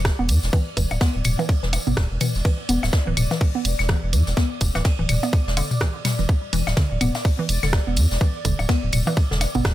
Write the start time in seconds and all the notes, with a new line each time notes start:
Already playing: E1 D5
0.05 kick, cross-stick, snare, ride, tambourine
0.19 E1 B3
0.29 E2, closed hi-hat, ride, tambourine
0.43 E1, snare, tambourine
0.53 E3, kick, ride, tambourine
0.77 E1 E3, kick, closed hi-hat, ride, tambourine
0.91 D1, tambourine, percussion blips, claves
1.01 B3, kick, snare, ride, tambourine
1.15 D1
1.24 D1, closed hi-hat, mid tom, ride, tambourine, claves
1.39 E3, tambourine, percussion blips
1.49 kick, ride, tambourine
1.63 E1 E3, snare
1.73 snare, closed hi-hat, ride, tambourine, percussion blips, claves
1.87 G1 B3, mid tom, tambourine
1.96 D1, kick, cross-stick, snare, ride
2.11 E1
2.21 E3, closed hi-hat, mid tom, ride, tambourine, claves
2.35 E1, snare, tambourine
2.45 E3, kick, ride, tambourine
2.69 E1 B3, closed hi-hat, ride, tambourine
2.83 D1, snare, tambourine, percussion blips, claves
2.92 kick, snare, ride, tambourine
3.07 D1 E3
3.17 D1, closed hi-hat, mid tom, ride, tambourine, claves
3.31 E3, snare, tambourine, percussion blips
3.41 kick, open hi-hat
3.55 B3
3.64 E1, closed hi-hat, ride, tambourine
3.79 E1, snare, tambourine, claves
3.89 E3, kick, cross-stick, snare, ride, tambourine
4.03 E1
4.13 E2 E3, closed hi-hat, ride, tambourine
4.27 E1, snare, tambourine
4.37 B3, kick, snare, ride, tambourine
4.61 E1, kick, closed hi-hat, ride, tambourine
4.75 D1 E3, snare, tambourine, percussion blips, claves
4.84 kick, snare, ride, tambourine
4.99 D1 E3
5.09 D1, closed hi-hat, mid tom, ride, tambourine, claves
5.23 B3, tambourine, percussion blips
5.33 kick, ride, tambourine
5.47 E1, snare
5.57 D3, closed hi-hat, ride, tambourine, percussion blips, claves
5.71 mid tom, tambourine
5.80 E3, kick, cross-stick, snare, ride, tambourine
6.04 G3, snare, closed hi-hat, mid tom, ride, tambourine, claves
6.18 E1 E3, snare, tambourine
6.29 kick, ride
6.53 E1 E3, closed hi-hat, ride, tambourine
6.67 D1, snare, tambourine, percussion blips, claves
6.77 D3, kick, snare, ride, tambourine
6.91 D1
7.01 D1 B3, closed hi-hat, mid tom, ride, tambourine, claves
7.15 snare, tambourine, percussion blips
7.25 kick, open hi-hat, tambourine
7.39 E3
7.49 E1, closed hi-hat, ride, tambourine
7.63 E1 D3, snare, tambourine, claves
7.73 kick, cross-stick, snare, ride, tambourine
7.87 E1 B3
7.96 E2, closed hi-hat, ride, tambourine
8.11 E1, snare, tambourine
8.21 E3, kick, ride, tambourine
8.45 E1 D3, kick, closed hi-hat, ride, tambourine
8.59 D1, tambourine, percussion blips, claves
8.69 B3, kick, snare, ride, tambourine
8.83 D1
8.92 D1, closed hi-hat, mid tom, ride, tambourine, claves
9.07 E3, tambourine, percussion blips
9.17 kick, ride, tambourine
9.31 E1 D3, snare
9.40 snare, closed hi-hat, ride, tambourine, percussion blips, claves
9.55 G1 B3, mid tom, tambourine
9.64 D1, kick, cross-stick, snare, ride, tambourine